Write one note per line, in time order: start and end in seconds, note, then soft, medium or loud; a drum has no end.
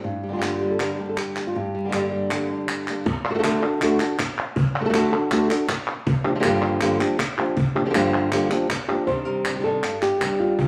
0.00 1.54 G2 medium
0.00 0.23 G3 medium
0.00 0.42 G4 medium
0.04 0.33 D4 soft
0.04 muted nylon-string guitar stroke soft
0.23 0.61 G3 medium
0.28 0.32 D3 soft
0.28 0.32 G3 soft
0.28 0.32 A#3 soft
0.28 0.33 D4 soft
0.28 0.33 G4 soft
0.33 0.36 D3 soft
0.33 0.36 G3 soft
0.33 0.37 A#3 soft
0.33 0.37 D4 soft
0.33 0.80 F4 medium
0.33 0.37 G4 soft
0.37 0.41 D3 medium
0.37 0.41 G3 medium
0.37 0.41 A#3 medium
0.37 0.42 D4 medium
0.37 0.42 G4 medium
0.42 0.78 G2 medium
0.42 0.78 D3 medium
0.42 0.79 G3 medium
0.42 0.79 A#3 medium
0.42 0.79 D4 medium
0.42 0.79 G4 medium
0.42 0.70 G4 medium
0.42 clap medium
0.61 1.53 G3 medium
0.71 0.80 A4 medium
0.79 0.98 G2 medium
0.79 0.98 D3 medium
0.79 1.53 D3 soft
0.79 0.98 G3 medium
0.79 0.98 A#3 medium
0.79 0.98 D4 medium
0.79 0.97 G4 medium
0.79 1.08 A#4 medium
0.79 clap medium
0.98 1.17 G3 soft
0.98 1.17 A#3 soft
0.98 1.17 D4 soft
0.98 1.17 G4 soft
1.09 1.17 A4 medium
1.17 1.55 G4 medium
1.17 muted nylon-string guitar stroke soft
1.17 clap medium
1.36 1.56 G3 soft
1.36 1.55 A#3 soft
1.36 1.55 D4 soft
1.36 1.55 G4 soft
1.36 clap medium
1.47 1.56 F4 medium
1.55 3.05 G2 medium
1.55 3.07 G4 medium
1.55 muted nylon-string guitar stroke soft
1.75 2.11 G3 medium
1.84 1.87 D3 soft
1.84 1.88 G3 soft
1.84 1.88 A#3 soft
1.84 1.88 D4 soft
1.84 1.89 G4 soft
1.89 1.92 D3 medium
1.89 1.92 G3 medium
1.89 1.93 A#3 soft
1.89 1.93 D4 soft
1.89 1.93 G4 medium
1.93 2.29 G2 soft
1.93 2.30 D3 medium
1.93 2.30 G3 medium
1.93 2.31 A#3 medium
1.93 2.31 D4 medium
1.93 2.31 G4 medium
1.93 clap medium
2.12 3.04 G3 soft
2.31 2.49 G2 medium
2.31 2.49 D3 medium
2.31 3.04 D3 soft
2.31 2.49 G3 medium
2.31 2.49 A#3 medium
2.31 2.49 D4 medium
2.31 2.48 G4 medium
2.31 clap medium
2.50 2.68 G3 soft
2.50 2.68 A#3 soft
2.50 2.68 D4 soft
2.50 2.69 D4 soft
2.50 2.68 G4 soft
2.68 3.29 D4 soft
2.68 muted nylon-string guitar stroke soft
2.68 clap medium
2.87 3.06 G3 soft
2.87 3.06 A#3 soft
2.87 3.07 A#3 soft
2.87 3.06 D4 soft
2.87 3.05 G4 soft
2.87 clap medium
3.06 muted nylon-string guitar stroke medium
3.06 cajon bass loud
3.06 cajon slap soft
3.25 clap soft
3.29 3.33 A3 soft
3.29 3.34 D4 medium
3.29 3.34 F#4 medium
3.29 3.34 A4 medium
3.34 3.38 A3 medium
3.34 3.38 D4 medium
3.34 3.38 F#4 medium
3.34 3.39 A4 medium
3.39 3.42 A3 medium
3.39 3.42 D4 medium
3.39 3.43 F#4 medium
3.39 3.43 A4 medium
3.43 3.62 D3 medium
3.43 3.62 A3 medium
3.43 3.62 D4 medium
3.43 3.62 F#4 medium
3.43 3.61 A4 medium
3.43 cajon slap loud
3.43 clap medium
3.62 3.81 D4 soft
3.62 3.81 F#4 soft
3.62 3.80 A4 medium
3.62 clap soft
3.81 3.99 D3 medium
3.81 3.99 A3 medium
3.81 4.00 D4 medium
3.81 4.00 F#4 loud
3.81 3.99 A4 medium
3.81 clap medium
4.00 4.18 D4 soft
4.00 4.18 A4 medium
4.00 clap medium
4.19 muted nylon-string guitar stroke medium
4.19 cajon slap loud
4.19 clap medium
4.38 clap soft
4.56 muted nylon-string guitar stroke medium
4.56 cajon bass loud
4.75 clap soft
4.80 4.83 A3 medium
4.80 4.84 D4 soft
4.80 4.84 F#4 medium
4.80 4.85 A4 medium
4.85 4.88 A3 medium
4.85 4.88 D4 medium
4.85 4.89 F#4 medium
4.85 4.89 A4 medium
4.89 4.93 A3 medium
4.89 4.93 D4 medium
4.89 4.93 F#4 medium
4.89 4.94 A4 medium
4.94 5.12 D3 medium
4.94 5.12 A3 medium
4.94 5.12 D4 medium
4.94 5.12 F#4 medium
4.94 5.11 A4 loud
4.94 cajon slap loud
4.94 clap medium
5.12 5.31 D4 soft
5.12 5.31 F#4 soft
5.12 5.31 A4 medium
5.12 clap soft
5.31 5.49 D3 medium
5.31 5.50 A3 medium
5.31 5.50 D4 medium
5.31 5.50 F#4 medium
5.31 5.49 A4 loud
5.31 clap medium
5.50 5.68 D4 soft
5.50 5.69 F#4 soft
5.50 5.68 A4 medium
5.50 cajon slap soft
5.50 clap medium
5.69 muted nylon-string guitar stroke medium
5.69 cajon slap loud
5.69 clap medium
5.87 clap medium
6.07 muted nylon-string guitar stroke medium
6.07 cajon bass loud
6.25 6.34 F3 soft
6.25 6.34 A#3 medium
6.25 6.34 D4 medium
6.25 6.35 G4 medium
6.35 6.38 D3 medium
6.35 6.39 F3 medium
6.35 6.39 A#3 medium
6.35 6.39 D4 medium
6.35 6.40 G4 medium
6.40 6.43 D3 medium
6.40 6.43 F3 medium
6.40 6.43 A#3 medium
6.40 6.43 D4 medium
6.40 6.44 G4 medium
6.40 clap medium
6.44 6.79 G2 medium
6.44 6.80 D3 medium
6.44 6.81 F3 medium
6.44 6.81 A#3 medium
6.44 6.81 D4 medium
6.44 6.81 G4 loud
6.44 cajon slap loud
6.62 clap soft
6.80 6.99 G2 medium
6.80 7.00 D3 medium
6.80 7.00 F3 medium
6.80 7.00 A#3 medium
6.80 6.99 D4 medium
6.80 6.98 G4 medium
6.80 clap medium
7.00 7.18 F3 soft
7.00 7.18 A#3 soft
7.00 7.19 D4 medium
7.00 7.18 G4 medium
7.00 cajon slap soft
7.00 clap medium
7.19 muted nylon-string guitar stroke medium
7.19 cajon slap loud
7.19 clap medium
7.38 7.57 F3 medium
7.38 7.57 A#3 medium
7.38 7.57 D4 medium
7.38 7.56 G4 medium
7.38 cajon slap soft
7.38 clap soft
7.57 muted nylon-string guitar stroke medium
7.57 cajon bass loud
7.75 7.84 F3 soft
7.75 7.85 A#3 medium
7.75 7.85 D4 medium
7.75 7.85 G4 medium
7.85 7.88 D3 soft
7.85 7.89 F3 medium
7.85 7.89 A#3 soft
7.85 7.89 D4 medium
7.85 7.90 G4 medium
7.90 7.93 D3 medium
7.90 7.94 F3 medium
7.90 7.94 A#3 medium
7.90 7.94 D4 medium
7.90 7.94 G4 medium
7.94 8.30 G2 medium
7.94 8.30 D3 medium
7.94 8.31 F3 medium
7.94 8.32 A#3 medium
7.94 8.32 D4 medium
7.94 8.32 G4 medium
7.94 cajon slap loud
7.94 clap medium
8.31 8.50 G2 medium
8.31 8.50 D3 medium
8.31 8.51 F3 medium
8.31 8.51 A#3 medium
8.31 8.50 D4 medium
8.31 8.49 G4 medium
8.31 clap medium
8.50 8.68 F3 soft
8.50 8.69 A#3 soft
8.50 8.69 D4 medium
8.50 8.69 G4 medium
8.50 clap medium
8.69 muted nylon-string guitar stroke medium
8.69 cajon slap loud
8.69 clap medium
8.88 9.08 F3 soft
8.88 9.07 A#3 soft
8.88 9.07 D4 medium
8.88 9.06 G4 medium
8.88 clap soft
9.07 9.44 C3 medium
9.07 9.83 C3 medium
9.07 9.45 D#3 medium
9.07 9.45 G3 medium
9.07 9.45 D4 medium
9.07 9.43 G4 medium
9.07 9.25 C5 loud
9.07 cajon bass medium
9.07 cajon slap soft
9.25 10.20 G3 medium
9.25 9.63 A#4 medium
9.45 9.54 G3 soft
9.45 9.55 D4 soft
9.45 10.57 D4 soft
9.45 9.55 G4 soft
9.45 cajon slap medium
9.45 clap medium
9.55 9.58 D#3 soft
9.55 9.59 G3 soft
9.55 9.59 D4 soft
9.55 9.60 G4 soft
9.60 9.63 D#3 medium
9.60 9.64 G3 medium
9.60 9.64 D4 medium
9.60 9.64 G4 medium
9.64 9.81 C3 medium
9.64 9.81 D#3 medium
9.64 9.82 G3 medium
9.64 9.82 D4 medium
9.64 9.82 G4 medium
9.64 10.02 A4 medium
9.83 10.59 G2 medium
9.83 muted nylon-string guitar stroke medium
9.83 clap medium
10.01 10.20 G3 soft
10.01 10.20 D4 soft
10.01 10.20 G4 soft
10.01 10.58 G4 medium
10.01 clap medium
10.20 10.39 D#3 soft
10.20 10.68 G3 medium
10.20 10.39 G3 soft
10.20 10.39 D4 soft
10.20 10.38 G4 medium
10.20 cajon slap medium
10.20 clap medium
10.39 10.58 G3 soft
10.39 10.58 D4 soft
10.39 10.68 F4 medium
10.39 10.58 G4 soft
10.58 10.68 C3 medium
10.58 10.68 D#3 medium
10.58 10.68 G3 medium
10.58 10.68 D4 medium
10.58 10.68 G4 medium
10.58 cajon bass loud